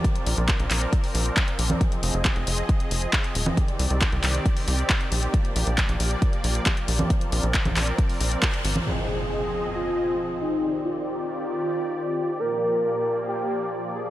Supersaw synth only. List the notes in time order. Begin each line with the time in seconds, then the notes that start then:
Already playing: F3 D5
0.04 C4 A#4
1.81 G#4 D#5
3.57 D#3 C4 G4 D5
5.34 F3 A#3 D5
7.10 C4 A#4 D5
8.87 F3 C4 G#4 D#5
10.63 D#3 G4 D5
12.40 A#2 F3 A#3